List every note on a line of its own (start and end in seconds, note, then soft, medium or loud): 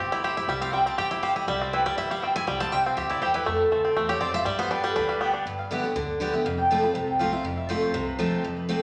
0.00 0.38 G1 medium
0.00 0.48 G3 medium
0.00 0.61 C4 medium
0.00 0.24 G4 medium
0.12 0.37 E4 medium
0.12 0.23 G4 medium
0.23 0.33 C4 loud
0.23 0.33 E4 medium
0.23 0.98 G4 medium
0.23 0.33 C5 medium
0.23 0.37 C5 medium
0.23 0.34 G5 loud
0.37 1.11 E4 medium
0.37 0.48 E5 loud
0.48 0.87 C2 medium
0.48 0.73 G3 medium
0.48 0.61 E5 medium
0.61 0.86 C4 medium
0.61 0.74 F5 loud
0.73 1.48 G3 medium
0.73 0.82 C4 loud
0.73 0.83 E4 medium
0.73 0.83 C5 medium
0.73 0.83 G5 loud
0.73 0.87 G5 loud
0.86 1.61 C4 medium
0.86 0.98 A5 loud
0.98 1.37 G1 medium
0.98 1.23 G4 medium
0.98 1.10 G5 loud
1.11 1.36 E4 medium
1.11 1.22 E5 medium
1.22 1.32 C4 medium
1.22 1.32 E4 medium
1.22 1.58 G4 medium
1.22 1.33 C5 loud
1.22 1.35 F5 loud
1.22 1.33 G5 loud
1.36 1.70 E4 medium
1.36 1.48 D#5 medium
1.47 1.86 C2 loud
1.47 1.83 G3 medium
1.47 1.61 E5 medium
1.61 2.23 C4 medium
1.61 1.72 D5 loud
1.72 1.82 C4 loud
1.72 1.82 E4 loud
1.72 1.97 E4 medium
1.72 1.86 B4 medium
1.72 1.82 C5 loud
1.72 1.82 G5 loud
1.86 2.10 G3 medium
1.86 1.97 D5 loud
1.97 2.36 G1 medium
1.97 2.33 E4 medium
1.97 2.10 E5 loud
2.11 2.45 G3 medium
2.11 2.23 F5 medium
2.22 2.32 C4 medium
2.22 2.58 C4 medium
2.22 2.32 E4 loud
2.22 2.32 C5 loud
2.22 2.35 G5 medium
2.22 2.32 G5 loud
2.36 2.70 E4 medium
2.36 2.47 G#5 loud
2.47 2.67 C2 medium
2.47 2.71 G3 medium
2.47 2.60 G5 medium
2.60 2.85 C4 medium
2.60 2.72 A5 loud
2.72 2.93 C2 medium
2.72 3.08 G3 medium
2.72 2.82 C4 loud
2.72 2.82 E4 loud
2.72 2.82 C5 loud
2.72 2.86 G5 loud
2.72 2.82 G5 loud
2.86 3.20 C4 medium
2.86 2.96 F5 loud
2.97 3.18 D2 medium
2.97 3.21 G4 medium
2.97 3.09 E5 loud
3.09 3.34 E4 medium
3.09 3.21 D5 medium
3.21 3.43 E2 medium
3.21 3.31 C4 medium
3.21 3.31 E4 medium
3.21 3.47 G4 medium
3.21 3.34 C5 medium
3.21 3.32 C5 loud
3.21 3.32 G5 loud
3.34 3.47 E4 medium
3.34 3.46 B4 loud
3.46 3.66 F2 medium
3.46 3.71 A3 medium
3.46 3.84 A4 medium
3.71 3.93 D2 medium
3.71 3.95 A3 medium
3.71 3.81 C4 medium
3.71 3.81 F4 loud
3.71 3.81 C5 medium
3.71 3.81 A5 loud
3.85 4.19 C4 medium
3.96 4.18 E2 medium
3.96 4.32 A3 medium
4.09 4.44 G4 medium
4.09 4.20 C#5 medium
4.20 4.42 F2 medium
4.20 4.30 C4 loud
4.20 4.46 C4 medium
4.20 4.31 F4 loud
4.20 4.31 C5 loud
4.20 4.34 D5 loud
4.20 4.31 A5 loud
4.34 4.46 F4 medium
4.34 4.45 E5 loud
4.45 4.85 G2 medium
4.45 4.81 G3 medium
4.45 4.58 D5 medium
4.59 4.94 B3 medium
4.59 4.70 C5 loud
4.70 4.80 B3 medium
4.70 4.95 D4 medium
4.70 4.80 G4 loud
4.70 4.83 B4 medium
4.70 4.81 D5 loud
4.70 4.81 G5 loud
4.83 5.08 G3 medium
4.83 4.95 A4 loud
4.96 5.35 D2 medium
4.96 5.31 D4 medium
4.96 5.19 B4 medium
5.09 5.43 G3 medium
5.20 5.30 B3 medium
5.20 5.46 B3 medium
5.20 5.30 G4 medium
5.20 5.30 D5 loud
5.20 5.31 G5 loud
5.34 5.46 D4 medium
5.46 5.84 G1 medium
5.46 5.94 G2 medium
5.59 5.70 F5 loud
5.71 5.83 D3 medium
5.71 5.83 G3 medium
5.71 5.84 B3 loud
5.71 5.82 G4 medium
5.71 5.83 E5 medium
5.84 5.96 B3 medium
5.84 5.95 G4 medium
5.84 5.95 C#5 medium
5.95 6.34 D2 medium
5.95 6.19 D3 loud
5.95 6.31 D5 medium
6.20 6.33 D3 medium
6.20 6.33 G3 medium
6.20 6.33 B3 medium
6.20 6.32 G4 medium
6.33 6.46 B3 soft
6.33 6.45 G4 medium
6.33 6.45 E5 medium
6.44 6.83 F1 medium
6.44 6.93 F2 medium
6.44 6.58 F5 medium
6.58 6.70 G5 loud
6.70 6.83 F3 medium
6.70 6.83 A3 loud
6.70 6.83 C4 loud
6.70 6.82 F4 medium
6.70 6.83 A5 medium
6.83 6.95 C4 medium
6.83 6.95 F4 medium
6.83 6.94 B5 loud
6.94 7.33 C2 medium
6.94 7.42 C3 loud
6.94 7.07 A5 medium
7.08 7.19 G5 medium
7.19 7.32 F3 medium
7.19 7.32 A3 medium
7.19 7.33 C4 medium
7.19 7.31 F4 medium
7.19 7.32 F5 medium
7.33 7.45 C4 soft
7.33 7.44 F4 medium
7.33 7.44 E5 medium
7.44 7.83 F1 medium
7.44 7.92 F2 medium
7.44 7.57 F5 loud
7.57 7.69 E5 loud
7.69 7.93 F3 medium
7.69 7.93 A3 medium
7.69 7.93 C4 loud
7.69 7.94 F4 medium
7.69 7.81 D5 medium
7.82 7.93 C#5 medium
7.94 8.33 C2 medium
7.94 8.42 C3 loud
7.94 8.06 C5 medium
8.07 8.18 B4 loud
8.19 8.43 F3 medium
8.19 8.43 A3 medium
8.19 8.43 C4 loud
8.19 8.43 F4 medium
8.19 8.32 A4 medium
8.32 8.43 G4 medium
8.43 8.82 F1 medium
8.43 8.82 F2 medium
8.43 8.56 A4 medium
8.56 8.68 B4 loud
8.68 8.82 F3 medium
8.68 8.82 A3 medium
8.68 8.82 C4 medium
8.68 8.82 F4 loud
8.68 8.81 D5 medium